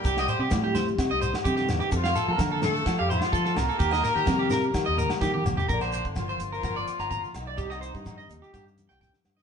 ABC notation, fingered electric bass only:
X:1
M:4/4
L:1/16
Q:1/4=128
K:Bb
V:1 name="Fingered electric bass" clef=bass
C,,2 z C, A,,4 C, C,,2 z C,2 =E,, z | F,,2 z F, D,4 F, F,,2 z F,2 C,, z | E,,2 z E, C,4 E, E,,2 z E,2 B,,, z | B,,,3 G,,,3 G,,,2 G,,,2 z G,,,2 z _C,,2 |
C,,3 G,,3 E,, z G,,3 C,,2 z G,,2 |]